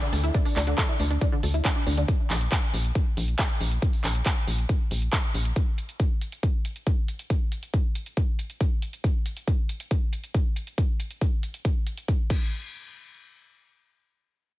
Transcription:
0.02 0.07 D3 loud
0.13 0.31 D2 loud
0.13 0.16 A4 medium
0.13 open hi-hat loud
0.24 0.29 E4 medium
0.24 closed hi-hat medium
0.34 0.40 D4 medium
0.34 kick loud
0.34 closed hi-hat medium
0.45 0.51 D4 medium
0.45 open hi-hat medium
0.56 0.74 D2 loud
0.56 0.62 D4 medium
0.56 clap medium
0.56 open hi-hat loud
0.67 0.73 D3 loud
0.67 closed hi-hat medium
0.78 0.81 A4 medium
0.78 kick loud
0.78 clap loud
0.78 closed hi-hat medium
0.89 0.94 E4 medium
1.00 1.18 D2 medium
1.00 1.05 D4 medium
1.00 open hi-hat loud
1.11 1.16 D4 medium
1.11 closed hi-hat medium
1.21 1.27 D4 medium
1.21 kick loud
1.21 closed hi-hat medium
1.32 1.38 D3 loud
1.43 1.61 D2 medium
1.43 1.46 A4 medium
1.43 open hi-hat loud
1.54 1.59 E4 medium
1.54 closed hi-hat medium
1.65 1.70 D4 medium
1.65 kick loud
1.65 clap loud
1.65 closed hi-hat medium
1.76 1.81 D4 medium
1.87 2.05 D2 loud
1.87 1.92 D4 medium
1.87 open hi-hat loud
1.98 2.03 D3 loud
1.98 closed hi-hat medium
2.08 kick loud
2.08 closed hi-hat medium
2.30 2.48 A#1 loud
2.30 clap medium
2.30 open hi-hat loud
2.41 closed hi-hat medium
2.52 kick loud
2.52 clap loud
2.52 closed hi-hat medium
2.74 2.92 A#1 medium
2.74 open hi-hat loud
2.84 closed hi-hat medium
2.95 kick loud
2.95 closed hi-hat medium
3.17 3.35 A#1 medium
3.17 open hi-hat loud
3.28 closed hi-hat medium
3.39 kick loud
3.39 clap loud
3.39 closed hi-hat medium
3.61 3.79 A#1 loud
3.61 open hi-hat loud
3.71 closed hi-hat medium
3.82 kick loud
3.82 closed hi-hat medium
3.93 open hi-hat medium
4.04 4.22 A#1 loud
4.04 clap medium
4.04 open hi-hat loud
4.15 closed hi-hat medium
4.26 kick loud
4.26 clap loud
4.26 closed hi-hat medium
4.47 4.66 A#1 medium
4.47 open hi-hat loud
4.58 closed hi-hat medium
4.69 kick loud
4.69 closed hi-hat medium
4.91 5.09 A#1 medium
4.91 open hi-hat loud
5.02 closed hi-hat medium
5.13 kick loud
5.13 clap loud
5.13 closed hi-hat medium
5.34 5.52 A#1 loud
5.34 open hi-hat loud
5.45 closed hi-hat medium
5.56 kick loud
5.56 closed hi-hat medium
5.78 closed hi-hat medium
5.89 closed hi-hat medium
6.00 kick loud
6.00 closed hi-hat medium
6.21 closed hi-hat medium
6.32 closed hi-hat medium
6.43 kick loud
6.43 closed hi-hat medium
6.65 closed hi-hat medium
6.76 closed hi-hat medium
6.87 kick loud
6.87 closed hi-hat medium
7.08 closed hi-hat medium
7.19 closed hi-hat medium
7.30 kick loud
7.30 closed hi-hat medium
7.52 closed hi-hat medium
7.63 closed hi-hat medium
7.74 kick loud
7.74 closed hi-hat medium
7.95 closed hi-hat medium
8.06 closed hi-hat medium
8.17 kick loud
8.17 closed hi-hat medium
8.39 closed hi-hat medium
8.50 closed hi-hat medium
8.61 kick loud
8.61 closed hi-hat medium
8.82 closed hi-hat medium
8.93 closed hi-hat medium
9.04 kick loud
9.04 closed hi-hat medium
9.26 closed hi-hat medium
9.37 closed hi-hat medium
9.47 kick loud
9.47 closed hi-hat medium
9.69 closed hi-hat medium
9.80 closed hi-hat medium
9.91 kick loud
9.91 closed hi-hat medium
10.13 closed hi-hat medium
10.24 closed hi-hat medium
10.34 kick loud
10.34 closed hi-hat medium
10.56 closed hi-hat medium
10.67 closed hi-hat medium
10.78 kick loud
10.78 closed hi-hat medium
11.00 closed hi-hat medium
11.11 closed hi-hat medium
11.21 kick loud
11.21 closed hi-hat medium
11.43 closed hi-hat medium
11.54 closed hi-hat medium
11.65 kick loud
11.65 closed hi-hat medium
11.87 closed hi-hat medium
11.97 closed hi-hat medium
12.08 kick loud
12.08 closed hi-hat medium
12.30 kick loud
12.30 crash medium

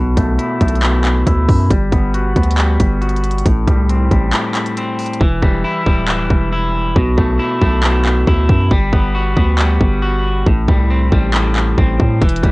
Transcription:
0.00 0.16 B1 loud
0.00 0.82 B2 loud
0.17 0.38 B1 loud
0.17 0.60 A3 medium
0.17 kick loud
0.17 closed hi-hat medium
0.38 1.26 E4 medium
0.38 closed hi-hat medium
0.61 1.24 B1 loud
0.61 1.70 A3 medium
0.61 kick loud
0.61 closed hi-hat medium
0.68 closed hi-hat medium
0.75 closed hi-hat soft
0.83 1.71 B2 medium
0.83 clap loud
0.83 closed hi-hat medium
1.05 clap medium
1.05 closed hi-hat medium
1.27 1.48 D2 loud
1.27 1.71 E4 medium
1.27 kick loud
1.27 closed hi-hat medium
1.48 1.70 F#2 loud
1.48 kick loud
1.48 open hi-hat medium
1.70 1.91 G1 loud
1.70 2.56 G3 medium
1.70 kick loud
1.70 closed hi-hat medium
1.92 2.34 G1 loud
1.92 2.35 B3 medium
1.92 kick loud
1.92 closed hi-hat medium
2.14 3.00 F#4 medium
2.14 closed hi-hat medium
2.36 2.78 D2 loud
2.36 3.45 B3 medium
2.36 kick loud
2.36 closed hi-hat soft
2.43 closed hi-hat medium
2.51 closed hi-hat medium
2.57 3.45 G3 medium
2.57 clap loud
2.57 closed hi-hat medium
2.80 3.43 G1 loud
2.80 kick medium
2.80 closed hi-hat medium
3.01 3.45 F#4 medium
3.01 closed hi-hat soft
3.09 closed hi-hat medium
3.16 closed hi-hat medium
3.24 closed hi-hat medium
3.31 closed hi-hat medium
3.38 closed hi-hat medium
3.46 3.67 A1 loud
3.46 4.31 A2 medium
3.46 kick loud
3.46 closed hi-hat medium
3.67 4.09 C2 loud
3.67 4.10 G3 medium
3.67 kick loud
3.67 closed hi-hat medium
3.89 4.76 C4 medium
3.89 closed hi-hat medium
4.11 4.32 A1 loud
4.11 5.21 G3 medium
4.11 kick medium
4.11 closed hi-hat medium
4.33 5.20 A2 medium
4.33 clap loud
4.33 closed hi-hat medium
4.55 clap medium
4.55 closed hi-hat medium
4.66 closed hi-hat medium
4.77 5.21 C4 medium
4.77 closed hi-hat medium
4.99 closed hi-hat soft
4.99 open hi-hat medium
5.06 closed hi-hat soft
5.13 closed hi-hat medium
5.21 5.42 E1 loud
5.21 6.07 E3 loud
5.21 kick loud
5.42 5.64 E1 loud
5.42 5.85 G3 medium
5.42 kick loud
5.64 6.51 E4 medium
5.86 6.28 D1 loud
5.86 6.96 G3 medium
5.86 kick loud
6.08 6.96 E3 medium
6.08 clap loud
6.30 6.93 E1 loud
6.30 kick medium
6.52 6.96 E4 medium
6.96 7.17 B1 loud
6.96 7.83 B2 medium
6.96 kick loud
7.17 7.39 B1 loud
7.17 7.61 A3 medium
7.17 kick medium
7.39 8.26 E4 medium
7.62 8.25 B1 loud
7.62 8.71 A3 medium
7.62 kick loud
7.84 8.72 B2 medium
7.84 clap loud
8.05 clap medium
8.27 8.48 D2 loud
8.27 8.71 E4 medium
8.27 kick loud
8.49 8.70 F#2 loud
8.49 kick loud
8.71 8.92 G1 loud
8.71 9.57 G3 medium
8.71 kick loud
8.93 9.35 G1 loud
8.93 9.35 B3 medium
8.93 kick loud
9.15 10.01 F#4 medium
9.37 9.79 D2 loud
9.37 10.46 B3 medium
9.37 kick loud
9.58 10.46 G3 medium
9.58 clap loud
9.81 10.44 G1 loud
9.81 kick medium
10.02 10.46 F#4 medium
10.46 10.67 A1 loud
10.46 11.32 A2 medium
10.46 kick loud
10.68 11.10 C2 loud
10.68 11.11 G3 medium
10.68 kick loud
10.90 11.77 C4 medium
11.12 11.75 A1 loud
11.12 12.22 G3 medium
11.12 kick medium
11.33 12.21 A2 medium
11.33 clap loud
11.56 clap medium
11.78 11.99 A1 loud
11.78 12.22 C4 medium
11.78 kick loud
12.00 12.21 A2 loud
12.00 kick loud
12.21 12.43 E1 loud
12.21 12.52 E3 loud
12.21 kick loud
12.21 closed hi-hat medium
12.29 closed hi-hat medium
12.36 closed hi-hat medium
12.43 12.52 E1 loud
12.43 12.52 G3 medium
12.43 kick medium
12.43 closed hi-hat medium

